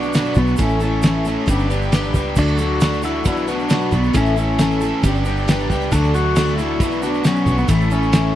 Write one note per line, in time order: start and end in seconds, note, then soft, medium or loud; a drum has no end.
0.00 0.28 B1 loud
0.00 0.38 B2 medium
0.00 0.14 F#3 medium
0.00 0.14 B3 soft
0.00 0.58 B3 medium
0.00 0.14 D4 soft
0.00 0.58 D4 medium
0.00 0.14 F#4 medium
0.00 0.58 F#4 medium
0.00 0.14 B4 medium
0.00 shaker soft
0.13 0.36 B2 medium
0.13 0.37 F#3 medium
0.13 0.37 B3 medium
0.13 0.36 D4 medium
0.13 0.36 F#4 loud
0.13 0.34 B4 medium
0.13 snare loud
0.13 ride bell medium
0.13 shaker loud
0.24 shaker soft
0.35 0.56 B1 loud
0.35 0.59 B3 soft
0.35 0.59 D4 medium
0.35 0.59 F#4 medium
0.35 0.58 B4 medium
0.35 kick medium
0.35 shaker medium
0.47 shaker soft
0.57 1.36 A1 loud
0.57 0.81 A2 medium
0.57 0.81 E3 medium
0.57 0.81 A3 medium
0.57 1.47 A3 medium
0.57 0.81 C#4 medium
0.57 1.47 C#4 medium
0.57 1.47 E4 medium
0.57 0.80 E4 medium
0.57 0.79 A4 medium
0.57 kick loud
0.57 ride bell medium
0.57 shaker loud
0.69 shaker soft
0.80 1.02 A3 soft
0.80 1.02 C#4 soft
0.80 1.02 E4 soft
0.80 1.03 A4 medium
0.80 shaker medium
1.02 1.25 A2 medium
1.02 1.25 E3 medium
1.02 1.25 A3 medium
1.02 1.25 C#4 medium
1.02 1.25 E4 medium
1.02 1.23 A4 medium
1.02 snare loud
1.02 ride bell medium
1.02 shaker loud
1.25 1.48 E3 medium
1.25 1.45 A3 soft
1.25 1.46 C#4 medium
1.25 1.47 E4 medium
1.25 1.47 A4 medium
1.25 snare soft
1.25 shaker medium
1.29 1.48 A2 medium
1.46 2.15 G1 loud
1.46 1.71 G2 medium
1.46 1.71 D3 loud
1.46 1.69 G3 medium
1.46 1.70 B3 loud
1.46 1.69 D4 medium
1.46 1.69 G4 medium
1.46 1.69 B4 medium
1.46 kick loud
1.46 ride bell medium
1.46 shaker loud
1.50 2.37 B3 medium
1.50 2.37 D4 medium
1.50 2.37 G4 medium
1.59 shaker soft
1.70 2.15 G2 medium
1.70 2.15 D3 medium
1.70 1.91 G3 medium
1.70 1.92 B3 medium
1.70 1.91 D4 medium
1.70 1.92 G4 medium
1.70 1.92 B4 medium
1.70 shaker medium
1.82 shaker soft
1.92 2.14 G3 medium
1.92 2.15 B3 medium
1.92 2.15 D4 loud
1.92 2.14 G4 loud
1.92 2.13 B4 medium
1.92 snare loud
1.92 ride bell medium
1.92 shaker loud
2.04 shaker soft
2.14 2.34 C#2 loud
2.14 2.37 G3 medium
2.14 2.36 B3 medium
2.14 2.36 D4 medium
2.14 2.37 G4 medium
2.14 2.36 B4 medium
2.14 kick medium
2.14 shaker medium
2.36 3.25 D2 loud
2.36 2.58 D3 medium
2.36 2.80 F#3 loud
2.36 2.59 A3 medium
2.36 3.26 A3 medium
2.36 2.59 D4 medium
2.36 3.25 D4 medium
2.36 2.59 F#4 medium
2.36 3.26 F#4 medium
2.36 2.57 A4 medium
2.36 kick loud
2.36 crash loud
2.36 shaker loud
2.47 shaker soft
2.58 2.80 D4 soft
2.58 2.80 F#4 medium
2.58 2.81 A4 medium
2.58 shaker medium
2.62 2.81 A3 medium
2.80 3.03 D3 medium
2.80 3.04 F#3 medium
2.80 3.03 A3 medium
2.80 3.03 D4 medium
2.80 3.03 F#4 medium
2.80 3.02 A4 medium
2.80 snare loud
2.80 ride bell medium
2.80 shaker loud
2.93 shaker soft
3.03 3.24 D3 medium
3.03 3.24 F#3 medium
3.03 3.25 A3 medium
3.03 3.25 D4 soft
3.03 3.26 E4 medium
3.03 3.25 F#4 medium
3.03 3.25 A4 medium
3.03 snare soft
3.03 shaker medium
3.25 3.83 B1 loud
3.25 3.48 B2 loud
3.25 3.47 F#3 loud
3.25 3.47 B3 medium
3.25 4.15 B3 medium
3.25 3.48 D4 medium
3.25 4.14 D4 medium
3.25 3.49 E4 loud
3.25 3.47 F#4 medium
3.25 4.15 F#4 medium
3.25 3.46 B4 medium
3.25 kick loud
3.25 ride bell medium
3.25 shaker loud
3.37 shaker soft
3.48 3.93 B2 medium
3.48 3.67 F#3 medium
3.48 3.69 B3 soft
3.48 3.69 D4 medium
3.48 3.70 F#4 soft
3.48 3.70 B4 medium
3.48 snare soft
3.48 shaker medium
3.59 shaker soft
3.69 3.92 B2 medium
3.69 3.92 F#3 medium
3.69 3.92 B3 medium
3.69 3.91 D4 medium
3.69 3.91 F#4 medium
3.69 3.90 B4 medium
3.69 snare loud
3.69 ride bell medium
3.69 shaker loud
3.80 shaker soft
3.91 4.11 B1 loud
3.91 4.14 B3 soft
3.91 4.14 D4 medium
3.91 4.14 F#4 medium
3.91 4.14 B4 medium
3.91 kick medium
3.91 shaker medium
4.03 shaker soft
4.13 4.92 A1 loud
4.13 4.36 A2 medium
4.13 4.36 E3 medium
4.13 4.36 A3 medium
4.13 5.03 A3 medium
4.13 4.37 C#4 medium
4.13 5.03 C#4 medium
4.13 4.36 E4 medium
4.13 5.03 E4 medium
4.13 4.35 A4 medium
4.13 kick loud
4.13 ride bell medium
4.13 shaker medium
4.26 shaker soft
4.36 4.58 A3 soft
4.36 4.59 C#4 medium
4.36 4.59 E4 medium
4.36 4.58 A4 medium
4.36 shaker medium
4.58 4.81 A2 medium
4.58 4.81 E3 medium
4.58 4.81 A3 medium
4.58 4.81 C#4 medium
4.58 4.81 E4 medium
4.58 4.80 A4 medium
4.58 snare loud
4.58 ride bell medium
4.58 shaker loud
4.71 shaker soft
4.81 5.03 A2 medium
4.81 5.03 E3 medium
4.81 5.03 A3 soft
4.81 5.04 C#4 soft
4.81 5.03 E4 medium
4.81 5.03 A4 medium
4.81 shaker medium
5.03 5.70 G1 loud
5.03 5.27 G2 medium
5.03 5.26 D3 loud
5.03 5.26 G3 medium
5.03 5.91 B3 medium
5.03 5.25 B3 loud
5.03 5.90 D4 medium
5.03 5.26 D4 medium
5.03 5.91 G4 medium
5.03 5.26 G4 medium
5.03 5.24 B4 medium
5.03 kick loud
5.03 ride bell medium
5.03 shaker loud
5.15 shaker soft
5.25 5.71 G2 medium
5.25 5.71 D3 medium
5.25 5.46 G3 medium
5.25 5.47 B3 medium
5.25 5.47 D4 medium
5.25 5.47 G4 medium
5.25 5.47 B4 medium
5.25 shaker medium
5.37 shaker soft
5.47 5.70 G3 medium
5.47 5.71 B3 medium
5.47 5.70 D4 loud
5.47 5.70 G4 loud
5.47 5.69 B4 loud
5.47 snare loud
5.47 ride bell medium
5.47 shaker loud
5.59 shaker soft
5.70 5.89 C#2 loud
5.70 5.92 G3 medium
5.70 5.92 B3 medium
5.70 5.92 D4 medium
5.70 5.92 G4 medium
5.70 5.92 B4 medium
5.70 kick medium
5.70 shaker medium
5.81 shaker soft
5.92 6.80 D2 loud
5.92 6.14 D3 medium
5.92 6.35 F#3 medium
5.92 6.79 A3 medium
5.92 6.14 A3 medium
5.92 6.79 D4 medium
5.92 6.14 D4 medium
5.92 6.79 F#4 medium
5.92 6.14 F#4 medium
5.92 6.13 A4 medium
5.92 kick loud
5.92 ride bell medium
5.92 shaker loud
6.04 shaker soft
6.14 6.36 A3 medium
6.14 6.36 D4 soft
6.14 6.37 F#4 medium
6.14 6.36 A4 medium
6.14 shaker medium
6.36 6.58 D3 medium
6.36 6.58 F#3 medium
6.36 6.59 A3 medium
6.36 6.59 D4 medium
6.36 6.59 F#4 medium
6.36 6.58 A4 medium
6.36 snare loud
6.36 ride bell medium
6.36 shaker loud
6.48 shaker soft
6.58 6.79 D3 medium
6.58 6.79 F#3 medium
6.58 6.79 A3 medium
6.58 6.79 D4 medium
6.58 7.04 E4 loud
6.58 6.81 F#4 soft
6.58 6.81 A4 medium
6.58 snare soft
6.58 shaker medium
6.62 6.80 D4 soft
6.79 7.38 B1 loud
6.79 7.03 B2 loud
6.79 7.68 D3 medium
6.79 7.02 F#3 loud
6.79 7.68 B3 medium
6.79 7.03 B3 medium
6.79 7.03 D4 medium
6.79 7.68 F#4 medium
6.79 7.03 F#4 medium
6.79 7.02 B4 medium
6.79 kick loud
6.79 ride bell medium
6.79 shaker loud
6.92 shaker soft
7.02 7.48 B2 medium
7.02 7.23 F#3 medium
7.02 7.25 B3 soft
7.02 7.25 D4 soft
7.02 7.25 F#4 soft
7.02 7.25 B4 medium
7.02 snare soft
7.02 shaker medium
7.14 shaker soft
7.24 7.47 B2 medium
7.24 7.47 F#3 medium
7.24 7.48 B3 medium
7.24 7.58 C#4 medium
7.24 7.47 D4 medium
7.24 7.46 F#4 medium
7.24 7.45 B4 medium
7.24 snare loud
7.24 ride bell medium
7.24 shaker loud
7.36 shaker soft
7.46 7.66 B1 loud
7.46 7.69 B3 soft
7.46 7.69 D4 medium
7.46 7.69 F#4 medium
7.46 7.69 B4 medium
7.46 kick loud
7.46 shaker medium
7.57 7.69 B3 medium
7.57 shaker soft
7.68 8.35 A1 loud
7.68 7.91 A2 medium
7.68 7.91 E3 medium
7.68 8.35 A3 medium
7.68 7.91 A3 medium
7.68 8.35 C#4 medium
7.68 7.90 C#4 medium
7.68 8.35 E4 medium
7.68 7.90 E4 medium
7.68 7.89 A4 medium
7.68 kick loud
7.68 ride bell medium
7.68 shaker loud
7.81 shaker soft
7.90 8.12 A3 medium
7.90 8.12 C#4 medium
7.90 8.12 E4 medium
7.90 8.13 A4 medium
7.90 shaker medium
8.02 shaker soft
8.13 8.35 A2 medium
8.13 8.35 E3 medium
8.13 8.35 A3 medium
8.13 8.34 C#4 medium
8.13 8.34 E4 medium
8.13 8.33 A4 medium
8.13 snare loud
8.13 ride bell medium
8.13 shaker loud